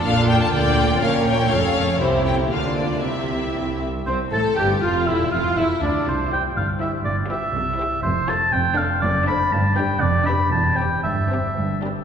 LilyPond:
<<
  \new Staff \with { instrumentName = "Oboe" } { \time 2/4 \key c \mixolydian \tempo 4 = 120 r2 | r2 | r2 | r2 |
c''8 a''8 g''8 f''8 | e''8 f''8 e''8 d''8 | c''8 g''8 f''8 e''8 | d''8 e''4. |
\key c \major c''8 a''8 g''8 f''8 | d''8 b''8 a''8 g''8 | d''8 b''8 a''8 g''8 | e''4. r8 | }
  \new Staff \with { instrumentName = "Violin section" } { \time 2/4 \key c \mixolydian f''8 g''16 a''16 g''4 | f''8 g''8 f''4 | c''8 g''8 f''8 d''8 | e''4. r8 |
c'8 a'8 g'8 f'8 | e'8 f'8 e'8 d'8 | r8 c''8 r8 c''8 | r8 b'8 r8 c''8 |
\key c \major r8 c''8 r8 d''8 | r8 c''8 r8 b'8 | r8 b'8 r8 c''8 | r8 c''8 r8 b'8 | }
  \new Staff \with { instrumentName = "Violin section" } { \time 2/4 \key c \mixolydian a'4 d''4 | des''2 | e'4 f'4 | g'4. r8 |
c'8 a'8 g'8 f'8 | e'8 f'8 e'8 d'8 | r8 g'8 r8 g'8 | r8 g'8 r8 g'8 |
\key c \major r8 a'8 r8 a'8 | r8 a'8 r8 g'8 | r8 g'8 r8 g'8 | r8 g'8 r8 g'8 | }
  \new Staff \with { instrumentName = "Viola section" } { \time 2/4 \key c \mixolydian << { f'2 | bes'4 a'4 | g'4 d'4 | e'4. r8 |
c'8 a'8 g'8 f'8 | e'8 f'8 e'8 d'8 | r2 | r2 |
\key c \major r2 | r2 | r2 | r2 | } \\ { d'4 bes4 | des'4 des'4 | c'4 bes4 | c'4. r8 |
r2 | r2 | r8 e'8 r8 e'8 | r8 f'8 r8 e'8 |
r8 f'8 r8 d'8 | r8 d'8 r8 d'8 | r8 d'8 r8 c'8 | r8 c'8 r8 d'8 | } >> }
  \new Staff \with { instrumentName = "Cello section" } { \clef bass \time 2/4 \key c \mixolydian bes,4 d4 | bes,4 f,4 | c4 d4 | c4 c,4 |
c,8 a,8 g,8 f,8 | e,8 f,8 e,8 d,8 | c4 g,4 | g,4 c4 |
\key c \major f,4 f,4 | fis,4 g,4 | f,4 e,4 | g,4 g,4 | }
  \new Staff \with { instrumentName = "Double bass section" } { \clef bass \time 2/4 \key c \mixolydian bes,,4 d,4 | bes,,4 f,,4 | c,4 d,4 | c,4 c,4 |
c,8 a,,8 g,,8 f,,8 | e,,8 f,,8 e,,8 d,8 | c,4 g,,4 | g,,4 c,4 |
\key c \major f,,4 f,,4 | fis,,4 g,,4 | f,,4 e,,4 | g,,4 g,,4 | }
>>